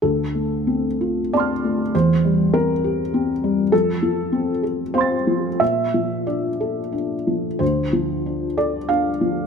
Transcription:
X:1
M:3/4
L:1/8
Q:1/4=94
K:Dm
V:1 name="Felt piano"
A4 [dac'f']2 | c2 B4 | A4 [cfc'a']2 | e2 d2 z2 |
c3 d f2 |]
V:2 name="Felt piano"
D,, A, C F C A, | E,, G, C G C G, | F,, F, C A C F, | B,, F, D A D F, |
D,, F, D A D F, |]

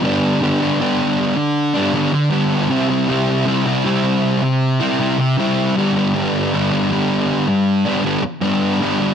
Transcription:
X:1
M:4/4
L:1/16
Q:1/4=79
K:G
V:1 name="Distorted electric guitar"
[D,G,B,D]2 [D,G,B,D] [G,B,D] [D,G,B,D]4- [D,G,B,D] [G,B,D] [D,G,B,D]2 [D,G,B,D]2 [C,G,CE] [G,CE] | [C,G,CE]2 [C,G,CE] [G,CE] [C,G,CE]4- [C,G,CE] [G,CE] [C,G,CE]2 [C,G,CE]2 [G,,D,G,B,D] [G,B,D] | [G,,D,G,B,D]2 [D,G,B,D] [G,B,D] [G,,D,G,B,D]4- [G,,D,G,B,D] [G,B,D] [D,G,B,D]2 [G,,D,G,B,D]2 [D,G,B,D] [G,B,D] |]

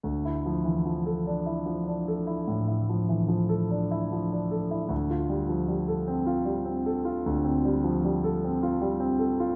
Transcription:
X:1
M:12/8
L:1/16
Q:3/8=50
K:Dm
V:1 name="Grand piano"
D,, E F, E, F, A D E F, D A E A,, E F, E, F, A D E F, D A E | D,, F G, F, G, A C F G, C A F D,, C G, F, G, A C F G, C A F |]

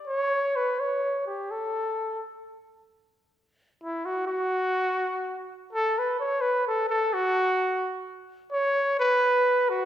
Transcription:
X:1
M:6/8
L:1/8
Q:3/8=85
K:F#phr
V:1 name="Trumpet"
c2 B c2 G | A3 z3 | z4 E F | F4- F z |
A B c B A A | F4 z2 | c2 B3 F |]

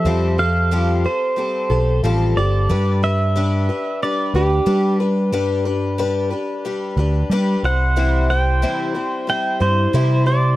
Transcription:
X:1
M:4/4
L:1/8
Q:1/4=91
K:G
V:1 name="Pedal steel guitar"
e =f2 c3 z d- | d e3 d G2 z | z6 z f- | f g3 g c2 d |]
V:2 name="Twelve-string acoustic guitar"
[=F,G,CGA] [GA] [F,G,CGA] [CGA] [G,CGA] [CGA] [F,G,CGA] [CGA] | [G,DGB] [DGB] [G,DGB] [DGB] [G,DGB] [DGB] [G,DGB] [DGB] | [G,DGB] [DGB] [G,DGB] [DGB] [G,DGB] [DGB] [G,DGB] [G,CEc] | [C,E,G,CEc] [G,CEc] [C,E,G,CEc] [G,CEc] [G,CEc] [G,CEc] [C,E,G,CEc] [G,CEc] |]
V:3 name="Picked electric bass" clef=bass
=F,,4 z B,,, A,,, G,,, | G,,4 z D,, G,2 | G,,4 z D,, G, C,,- | C,,3 z2 G,, C,2 |]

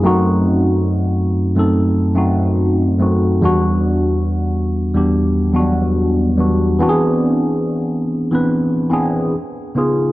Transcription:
X:1
M:4/4
L:1/16
Q:"Swing 16ths" 1/4=71
K:Em
V:1 name="Tine electric piano"
[F,,A,C^DF]6 z [F,,A,CDA]2 z [F,,A,CDF]3 z [F,,A,CDF]2 | [E,,G,B,DF]6 z [E,,G,B,DG]2 z [E,,F,G,B,DF]3 z [E,,G,B,DF]2 | [E,B,CDF^G]6 z [E,B,CDB]2 z [E,B,CDG]2 z2 [^C,B,^D^EG]2 |]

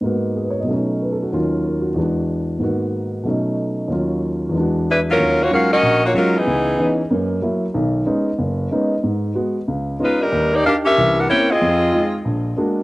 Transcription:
X:1
M:4/4
L:1/16
Q:"Swing" 1/4=187
K:Ebm
V:1 name="Saxophone section"
z16 | z16 | z16 | z12 [^G,=D=E=B]2 [_G,_DF_B]2- |
[G,DFB]2 [B,FGd]2 [DGBf]2 [DGBe]4 [B,FGd]2 [G,DFB]2 [_F,CEA]2- | [_F,CEA]6 z8 z2 | z16 | z12 [A,EFc]2 [=G,=DEB]2- |
[=G,=DEB]2 [B,E=G=d]2 [DGBf]2 [_DGB_f]4 [=DGB_g]2 [=EB_d=g]2 [=C=FA_e]2- | [=CFAe]6 z8 z2 |]
V:2 name="Grand piano"
z4 A c d e z4 (3=B2 =A2 ^F2- | ^F z3 B2 G3 z6 z | z16 | z16 |
E,,4 [G,A,DEF]2 z2 B,,,4 [G,A,DEF]2 z2 | D,,4 [_F,CDE]2 z2 [G,,B,]4 [G,B,_F]2 z2 | [=B,,,^D,]4 [^G,=B,^C^D]2 z2 ^F,,,4 [G,B,CD]2 z2 | A,,4 [A,CG]2 z2 D,,4 [CDEF]2 z2 |
E,,4 [=DE=G]2 z2 [=C,,=E,]4 [B,=C_D=E]2 z2 | F,,4 [A,EF]2 z2 B,,,4 [A,B,=D^F]2 z2 |]
V:3 name="Grand piano" clef=bass
[A,,A,B,CG]8 [=B,,^F,=A,D^D]8 | [E,,E,G,DF]8 [=E,,=E,^G,=D_G]8 | [A,,E,B,CG]8 [=B,,^F,=A,D^D]8 | [E,,E,G,DF]8 [=E,,=E,^G,=D_G]8 |
z16 | z16 | z16 | z16 |
z16 | z16 |]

